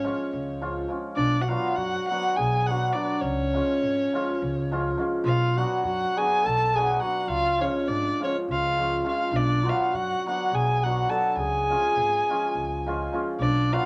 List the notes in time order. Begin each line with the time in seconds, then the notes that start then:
Already playing: C#4 C#5
0.04 F3 G#3 C#4 F4
0.33 C#2
0.61 F3 G#3 C#4 F4
0.88 F3 G#3 C#4 F4
1.15 B1 D4 D5
1.41 F#4 F#5
1.48 F#3 B3 D4 F4 F#4 F5
1.76 F#2 F#4 F#5
2.08 F#3 B3 F#4 F#5
2.12 D4 F#4
2.36 B1 G#4 G#5
2.66 F#3 B3 D4 F#4 F#5
2.71 F#4
2.93 F#3 B3 D4 F#4 D5
3.21 C#2 C#4 C#5
3.54 F3 G#3 C#4 F4
3.82 G#1
4.13 F3 G#3 C#4 F4
4.42 C#2
4.71 F3 G#3 C#4 F4
4.97 F3 G#3 C#4 F4
5.24 B1 F4 F5
5.57 F#3 B3 D4 F#4 F#5
5.84 F#2 F#4 F#5
6.16 F#3 B3 D4 F#4 G#4 G#5
6.43 B1 A4 A5
6.74 F#3 B3 D4 F#4 G#4 G#5
6.93 G#4 G#5
7.00 F#3 B3 D4 F#4 F#5
7.19 F#4 F#5
7.28 C#2 F4 F5
7.58 F3 G#3 C#4 F4 C#5
7.87 G#1 D4 D5
8.20 F3 G#3 C#4 F4 C#5
8.24 C#4
8.48 C#2 F4 F5
8.78 F3 G#3 C#4 F4
9.04 F3 G#3 C#4 F4 F5
9.31 B1 D4
9.36 D5
9.64 F#3 B3 D4 F4 F#4
9.69 F5
9.93 F#2 F#4 F#5
10.26 F#3 B3 D4 F#4 F#5
10.52 B1 G#4 G#5
10.83 F#3 B3 D4 F#4 F#5
11.09 F#3 B3 D4 F#4 A4 A5
11.35 C#2 G#5
11.39 G#4
11.69 F3 G#3 C#4 F4
11.96 G#1
12.30 F3 G#3 C#4 F4
12.55 C#2
12.86 F3 G#3 C#4 F4
13.13 F3 G#3 C#4 F4
13.37 B1 D4 D5
13.72 F#3 B3 D4 F4 F#4 F5